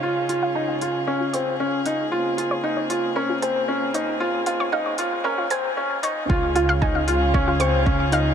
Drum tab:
HH |-x-x-x-x|-x-x-x-x|-x-x-x-x|-x-x-x-x|
BD |--------|--------|--------|o-o-o-o-|